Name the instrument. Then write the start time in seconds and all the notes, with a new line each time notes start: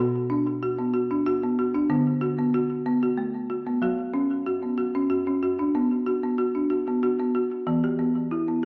marimba
Already playing: B2
0.00 F#4
0.30 D4
0.62 F#4
0.78 B3
0.94 F#4
1.11 D4
1.26 F#4
1.43 B3
1.59 F#4
1.74 D4
1.90 D3 B3
2.21 F#4
2.39 B3
2.54 F#4
2.86 B3
3.03 F#4
3.18 A3
3.50 F#4
3.67 B3
3.82 F#3 F#4
4.13 C#4
4.46 F#4
4.63 B3
4.78 F#4
4.95 C#4
5.10 F#4
5.27 C#4
5.42 F#4
5.59 D4
5.75 B3
6.06 F#4
6.23 B3
6.38 F#4
6.55 D4
6.70 F#4
6.87 B3
7.03 F#4
7.20 B3
7.35 F#4
7.67 E3 B3
7.84 G4
7.99 B3
8.31 E4
8.48 B3